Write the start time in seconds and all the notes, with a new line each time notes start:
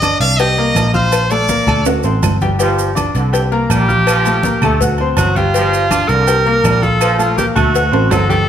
Already playing: G1 D#5
0.02 D4 D5 D6, cowbell, high conga, low timbale, low agogo, claves, maracas
0.20 C2 F5, cowbell, high conga, low agogo, maracas
0.39 G4 D#5 G5 G6, cowbell, high conga, low agogo, maracas
0.57 A#3 A#4 A#5, cowbell, high conga
0.75 A#1, cowbell, high conga, low timbale, low agogo, claves, maracas
0.94 F4 C5 F5 F6, high conga, maracas
1.12 cowbell, high conga, low agogo, claves, maracas
1.30 A3 A4 D5 A5, high conga, low agogo, maracas
1.49 A#3 A#4 A#5, cowbell, high conga, low timbale, maracas
1.67 D2 A3 A4 A5, high conga, low conga, low agogo, claves, maracas
1.85 F#4 F#5 F#6, cowbell, high conga, high timbale, maracas
2.03 A1 C4 C5 C6, high conga, high timbale, low agogo, maracas
2.23 G1, cowbell, high conga, low timbale, low agogo, claves, maracas
2.41 G3 G4 G5, cowbell, high conga, low timbale, maracas
2.59 F3 G3 G4 G5, cowbell, high conga, low agogo, maracas
2.79 high conga, maracas
2.95 D4 D5 D6, cowbell, high conga, low timbale, low agogo, claves, maracas
3.15 C2 D3, cowbell, high conga, low agogo, maracas
3.33 G4 G5 G6, cowbell, high conga, low agogo, maracas
3.52 A#3 A#4 A#5, cowbell, high conga
3.70 A#1 G3 G4, cowbell, high conga, low timbale, low agogo, claves, maracas
3.88 F4 F5 F6, high conga, maracas
4.07 F3, cowbell, high conga, low agogo, claves, maracas
4.25 A3 A4 A5, high conga, low agogo, maracas
4.43 A#3 A#4 A#5, cowbell, high conga, low timbale, maracas
4.62 D2 A3 A4 A5, high conga, low conga, low agogo, claves, maracas
4.81 F#4 F#5 F#6, cowbell, high conga, low conga, maracas
4.98 C4 C5 C6, high conga, low agogo
5.17 G1 F#3 F#4, cowbell, high conga, low timbale, low agogo, claves, maracas
5.36 G3 F4 G4 G5, cowbell, high conga, maracas
5.54 F3 G3 G4 G5, cowbell, high conga, low agogo, maracas
5.73 high conga, maracas
5.91 D4 D5 D6, cowbell, high conga, low timbale, low agogo, claves, maracas
6.08 C2 D3 A#4, cowbell, high conga, low agogo, maracas
6.27 G4 G5 G6, cowbell, high conga, low agogo, maracas
6.46 A#3 A#4 A#5, cowbell, high conga
6.64 A#1 G3, cowbell, high conga, low timbale, low agogo, claves, maracas
6.82 F4 A4 F5 F6, high conga, maracas
7.01 F3, cowbell, high conga, low agogo, claves, maracas
7.19 A3 F4 A4 A5, high conga, low agogo, maracas
7.36 A#3 G4 A#4 A#5, cowbell, high conga, low timbale, maracas
7.56 D2 A3 F#4 A4 A5, high conga, low conga, low agogo, claves, maracas
7.74 F#4 F#5 F#6, cowbell, high conga, maracas
7.92 A1 C4 C5 C6, high conga, high timbale, low agogo
8.10 G1 F#3 A4, cowbell, high conga, low timbale, low agogo, claves, maracas
8.29 G3 G4 A4 G5, cowbell, high conga, low timbale, maracas